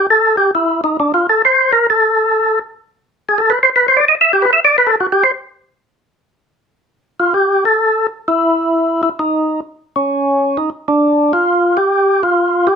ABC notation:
X:1
M:4/4
L:1/16
Q:"Swing" 1/4=132
K:Gmix
V:1 name="Tonewheel organ"
A2 G2 E2 ^D2 (3=D2 F2 A2 c2 _B2 | A6 z6 ^G A B c | B c d ^d e G B e =d B A ^F G c z2 | z12 z2 F2 |
G2 A4 z2 E6 E2 | ^D4 z2 ^C6 D2 =D2- | D2 F4 G4 F4 G2 |]